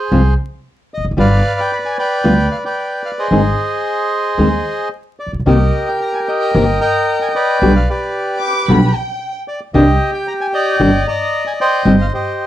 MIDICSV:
0, 0, Header, 1, 5, 480
1, 0, Start_track
1, 0, Key_signature, -3, "minor"
1, 0, Tempo, 531915
1, 1059, Time_signature, 4, 2, 24, 8
1, 3464, Tempo, 539084
1, 7304, Tempo, 529101
1, 11218, End_track
2, 0, Start_track
2, 0, Title_t, "Violin section"
2, 0, Program_c, 0, 48
2, 7550, Note_on_c, 0, 86, 89
2, 7773, Note_off_c, 0, 86, 0
2, 7791, Note_on_c, 0, 83, 77
2, 8030, Note_off_c, 0, 83, 0
2, 8037, Note_on_c, 0, 79, 64
2, 8391, Note_off_c, 0, 79, 0
2, 11218, End_track
3, 0, Start_track
3, 0, Title_t, "Bandoneon"
3, 0, Program_c, 1, 23
3, 0, Note_on_c, 1, 68, 48
3, 0, Note_on_c, 1, 72, 46
3, 306, Note_off_c, 1, 68, 0
3, 308, Note_off_c, 1, 72, 0
3, 847, Note_on_c, 1, 75, 72
3, 949, Note_off_c, 1, 75, 0
3, 1074, Note_on_c, 1, 71, 64
3, 1075, Note_on_c, 1, 74, 65
3, 1083, Note_on_c, 1, 77, 86
3, 1443, Note_off_c, 1, 77, 0
3, 1446, Note_on_c, 1, 79, 78
3, 1546, Note_off_c, 1, 79, 0
3, 1562, Note_on_c, 1, 83, 69
3, 1611, Note_off_c, 1, 83, 0
3, 1673, Note_on_c, 1, 80, 72
3, 1779, Note_off_c, 1, 80, 0
3, 1780, Note_off_c, 1, 74, 0
3, 1783, Note_off_c, 1, 71, 0
3, 1793, Note_on_c, 1, 74, 61
3, 1797, Note_on_c, 1, 71, 61
3, 1798, Note_on_c, 1, 79, 83
3, 2237, Note_off_c, 1, 79, 0
3, 2269, Note_on_c, 1, 77, 65
3, 2322, Note_off_c, 1, 77, 0
3, 2382, Note_off_c, 1, 74, 0
3, 2384, Note_off_c, 1, 71, 0
3, 2392, Note_on_c, 1, 79, 66
3, 2395, Note_on_c, 1, 74, 52
3, 2398, Note_on_c, 1, 71, 46
3, 2723, Note_off_c, 1, 79, 0
3, 2755, Note_on_c, 1, 77, 67
3, 2806, Note_off_c, 1, 77, 0
3, 2877, Note_on_c, 1, 75, 69
3, 2879, Note_on_c, 1, 72, 53
3, 2881, Note_on_c, 1, 68, 51
3, 2954, Note_off_c, 1, 74, 0
3, 2955, Note_off_c, 1, 71, 0
3, 4395, Note_off_c, 1, 75, 0
3, 4396, Note_off_c, 1, 72, 0
3, 4397, Note_off_c, 1, 68, 0
3, 4672, Note_on_c, 1, 74, 58
3, 4780, Note_off_c, 1, 74, 0
3, 4910, Note_on_c, 1, 75, 72
3, 4918, Note_on_c, 1, 67, 54
3, 4918, Note_on_c, 1, 70, 54
3, 5274, Note_on_c, 1, 79, 71
3, 5281, Note_off_c, 1, 75, 0
3, 5383, Note_off_c, 1, 79, 0
3, 5400, Note_on_c, 1, 82, 71
3, 5506, Note_on_c, 1, 80, 67
3, 5507, Note_off_c, 1, 82, 0
3, 5561, Note_off_c, 1, 80, 0
3, 5633, Note_off_c, 1, 70, 0
3, 5640, Note_on_c, 1, 79, 82
3, 5643, Note_on_c, 1, 75, 58
3, 5647, Note_on_c, 1, 70, 59
3, 5840, Note_off_c, 1, 67, 0
3, 6101, Note_off_c, 1, 79, 0
3, 6104, Note_off_c, 1, 75, 0
3, 6110, Note_on_c, 1, 82, 79
3, 6115, Note_on_c, 1, 79, 54
3, 6117, Note_on_c, 1, 75, 51
3, 6444, Note_off_c, 1, 82, 0
3, 6472, Note_on_c, 1, 80, 67
3, 6525, Note_off_c, 1, 80, 0
3, 6563, Note_off_c, 1, 70, 0
3, 6580, Note_off_c, 1, 79, 0
3, 6591, Note_on_c, 1, 71, 55
3, 6593, Note_on_c, 1, 74, 55
3, 6594, Note_on_c, 1, 79, 75
3, 6797, Note_off_c, 1, 75, 0
3, 6926, Note_off_c, 1, 79, 0
3, 6953, Note_on_c, 1, 77, 65
3, 7063, Note_off_c, 1, 71, 0
3, 7065, Note_off_c, 1, 74, 0
3, 7073, Note_off_c, 1, 77, 0
3, 7074, Note_on_c, 1, 67, 40
3, 7077, Note_on_c, 1, 71, 45
3, 7079, Note_on_c, 1, 74, 57
3, 7518, Note_off_c, 1, 74, 0
3, 7995, Note_off_c, 1, 67, 0
3, 7996, Note_off_c, 1, 71, 0
3, 8505, Note_on_c, 1, 74, 68
3, 8613, Note_off_c, 1, 74, 0
3, 8744, Note_on_c, 1, 75, 83
3, 8749, Note_on_c, 1, 67, 59
3, 9078, Note_off_c, 1, 75, 0
3, 9110, Note_on_c, 1, 79, 81
3, 9230, Note_off_c, 1, 79, 0
3, 9234, Note_on_c, 1, 82, 75
3, 9285, Note_off_c, 1, 82, 0
3, 9356, Note_on_c, 1, 80, 74
3, 9407, Note_off_c, 1, 80, 0
3, 9469, Note_on_c, 1, 79, 91
3, 9475, Note_on_c, 1, 74, 64
3, 9476, Note_on_c, 1, 75, 58
3, 9670, Note_off_c, 1, 67, 0
3, 9914, Note_off_c, 1, 79, 0
3, 9948, Note_off_c, 1, 75, 0
3, 9952, Note_off_c, 1, 74, 0
3, 9956, Note_on_c, 1, 82, 82
3, 9961, Note_on_c, 1, 75, 61
3, 9965, Note_on_c, 1, 74, 58
3, 10284, Note_off_c, 1, 82, 0
3, 10313, Note_on_c, 1, 80, 65
3, 10364, Note_off_c, 1, 80, 0
3, 10426, Note_off_c, 1, 75, 0
3, 10439, Note_on_c, 1, 72, 57
3, 10439, Note_on_c, 1, 79, 80
3, 10440, Note_on_c, 1, 75, 56
3, 10636, Note_off_c, 1, 74, 0
3, 10766, Note_off_c, 1, 79, 0
3, 10806, Note_on_c, 1, 77, 64
3, 10855, Note_off_c, 1, 77, 0
3, 10909, Note_off_c, 1, 72, 0
3, 10909, Note_off_c, 1, 75, 0
3, 10921, Note_on_c, 1, 67, 42
3, 10922, Note_on_c, 1, 75, 56
3, 10923, Note_on_c, 1, 72, 44
3, 11218, Note_off_c, 1, 67, 0
3, 11218, Note_off_c, 1, 72, 0
3, 11218, Note_off_c, 1, 75, 0
3, 11218, End_track
4, 0, Start_track
4, 0, Title_t, "Nylon-string guitar"
4, 0, Program_c, 2, 24
4, 102, Note_on_c, 2, 48, 66
4, 107, Note_on_c, 2, 53, 66
4, 107, Note_on_c, 2, 56, 67
4, 109, Note_on_c, 2, 60, 72
4, 113, Note_on_c, 2, 65, 66
4, 183, Note_off_c, 2, 48, 0
4, 185, Note_off_c, 2, 53, 0
4, 185, Note_off_c, 2, 56, 0
4, 186, Note_off_c, 2, 60, 0
4, 188, Note_off_c, 2, 65, 0
4, 1054, Note_on_c, 2, 55, 73
4, 1060, Note_on_c, 2, 59, 78
4, 1065, Note_on_c, 2, 65, 76
4, 1138, Note_off_c, 2, 55, 0
4, 1141, Note_off_c, 2, 59, 0
4, 1143, Note_off_c, 2, 65, 0
4, 2021, Note_on_c, 2, 55, 64
4, 2028, Note_on_c, 2, 59, 76
4, 2032, Note_on_c, 2, 65, 71
4, 2102, Note_off_c, 2, 55, 0
4, 2105, Note_off_c, 2, 59, 0
4, 2107, Note_off_c, 2, 65, 0
4, 2988, Note_on_c, 2, 51, 64
4, 2990, Note_on_c, 2, 56, 64
4, 2994, Note_on_c, 2, 60, 69
4, 2996, Note_on_c, 2, 63, 69
4, 2998, Note_on_c, 2, 68, 75
4, 3066, Note_off_c, 2, 51, 0
4, 3068, Note_off_c, 2, 56, 0
4, 3069, Note_off_c, 2, 60, 0
4, 3071, Note_off_c, 2, 63, 0
4, 3072, Note_off_c, 2, 68, 0
4, 3947, Note_on_c, 2, 51, 57
4, 3952, Note_on_c, 2, 56, 63
4, 3955, Note_on_c, 2, 60, 70
4, 3956, Note_on_c, 2, 68, 65
4, 3957, Note_on_c, 2, 63, 68
4, 4025, Note_off_c, 2, 51, 0
4, 4028, Note_off_c, 2, 56, 0
4, 4029, Note_off_c, 2, 60, 0
4, 4030, Note_off_c, 2, 63, 0
4, 4030, Note_off_c, 2, 68, 0
4, 4906, Note_on_c, 2, 48, 64
4, 4910, Note_on_c, 2, 51, 71
4, 4910, Note_on_c, 2, 58, 73
4, 4914, Note_on_c, 2, 60, 65
4, 4915, Note_on_c, 2, 67, 74
4, 4988, Note_off_c, 2, 48, 0
4, 4990, Note_off_c, 2, 51, 0
4, 4990, Note_off_c, 2, 58, 0
4, 4992, Note_off_c, 2, 60, 0
4, 4992, Note_off_c, 2, 67, 0
4, 5871, Note_on_c, 2, 51, 63
4, 5873, Note_on_c, 2, 48, 66
4, 5875, Note_on_c, 2, 58, 70
4, 5879, Note_on_c, 2, 60, 77
4, 5879, Note_on_c, 2, 67, 73
4, 5952, Note_off_c, 2, 48, 0
4, 5952, Note_off_c, 2, 51, 0
4, 5953, Note_off_c, 2, 58, 0
4, 5955, Note_off_c, 2, 60, 0
4, 5955, Note_off_c, 2, 67, 0
4, 6825, Note_on_c, 2, 47, 76
4, 6829, Note_on_c, 2, 50, 68
4, 6831, Note_on_c, 2, 55, 69
4, 6834, Note_on_c, 2, 59, 74
4, 6836, Note_on_c, 2, 67, 73
4, 6908, Note_off_c, 2, 47, 0
4, 6910, Note_off_c, 2, 50, 0
4, 6911, Note_off_c, 2, 55, 0
4, 6912, Note_off_c, 2, 59, 0
4, 6913, Note_off_c, 2, 67, 0
4, 7790, Note_on_c, 2, 47, 67
4, 7793, Note_on_c, 2, 55, 67
4, 7794, Note_on_c, 2, 50, 63
4, 7798, Note_on_c, 2, 59, 77
4, 7798, Note_on_c, 2, 67, 66
4, 7870, Note_off_c, 2, 47, 0
4, 7872, Note_off_c, 2, 50, 0
4, 7872, Note_off_c, 2, 55, 0
4, 7874, Note_off_c, 2, 59, 0
4, 7874, Note_off_c, 2, 67, 0
4, 8744, Note_on_c, 2, 48, 78
4, 8747, Note_on_c, 2, 51, 77
4, 8751, Note_on_c, 2, 55, 75
4, 8752, Note_on_c, 2, 62, 85
4, 8753, Note_on_c, 2, 67, 82
4, 8825, Note_off_c, 2, 48, 0
4, 8826, Note_off_c, 2, 51, 0
4, 8829, Note_off_c, 2, 55, 0
4, 8829, Note_off_c, 2, 62, 0
4, 8830, Note_off_c, 2, 67, 0
4, 9704, Note_on_c, 2, 48, 61
4, 9706, Note_on_c, 2, 51, 71
4, 9707, Note_on_c, 2, 55, 66
4, 9711, Note_on_c, 2, 62, 71
4, 9712, Note_on_c, 2, 67, 78
4, 9785, Note_off_c, 2, 48, 0
4, 9786, Note_off_c, 2, 51, 0
4, 9786, Note_off_c, 2, 55, 0
4, 9789, Note_off_c, 2, 62, 0
4, 9789, Note_off_c, 2, 67, 0
4, 10660, Note_on_c, 2, 55, 69
4, 10661, Note_on_c, 2, 48, 69
4, 10665, Note_on_c, 2, 60, 79
4, 10668, Note_on_c, 2, 63, 69
4, 10670, Note_on_c, 2, 67, 78
4, 10741, Note_off_c, 2, 55, 0
4, 10742, Note_off_c, 2, 48, 0
4, 10744, Note_off_c, 2, 60, 0
4, 10745, Note_off_c, 2, 63, 0
4, 10746, Note_off_c, 2, 67, 0
4, 11218, End_track
5, 0, Start_track
5, 0, Title_t, "Upright bass"
5, 0, Program_c, 3, 32
5, 104, Note_on_c, 3, 36, 81
5, 304, Note_off_c, 3, 36, 0
5, 879, Note_on_c, 3, 28, 47
5, 937, Note_off_c, 3, 28, 0
5, 942, Note_on_c, 3, 29, 56
5, 996, Note_off_c, 3, 29, 0
5, 1001, Note_on_c, 3, 30, 60
5, 1056, Note_off_c, 3, 30, 0
5, 1061, Note_on_c, 3, 31, 81
5, 1263, Note_off_c, 3, 31, 0
5, 2025, Note_on_c, 3, 38, 84
5, 2225, Note_off_c, 3, 38, 0
5, 2985, Note_on_c, 3, 32, 72
5, 3186, Note_off_c, 3, 32, 0
5, 3944, Note_on_c, 3, 39, 77
5, 4144, Note_off_c, 3, 39, 0
5, 4734, Note_on_c, 3, 33, 36
5, 4788, Note_off_c, 3, 33, 0
5, 4793, Note_on_c, 3, 34, 48
5, 4843, Note_off_c, 3, 34, 0
5, 4848, Note_on_c, 3, 35, 53
5, 4904, Note_off_c, 3, 35, 0
5, 4909, Note_on_c, 3, 36, 76
5, 5111, Note_off_c, 3, 36, 0
5, 5874, Note_on_c, 3, 31, 81
5, 6074, Note_off_c, 3, 31, 0
5, 6825, Note_on_c, 3, 35, 74
5, 7028, Note_off_c, 3, 35, 0
5, 7785, Note_on_c, 3, 35, 85
5, 7988, Note_off_c, 3, 35, 0
5, 8746, Note_on_c, 3, 36, 81
5, 8947, Note_off_c, 3, 36, 0
5, 9705, Note_on_c, 3, 31, 77
5, 9907, Note_off_c, 3, 31, 0
5, 10661, Note_on_c, 3, 31, 76
5, 10863, Note_off_c, 3, 31, 0
5, 11218, End_track
0, 0, End_of_file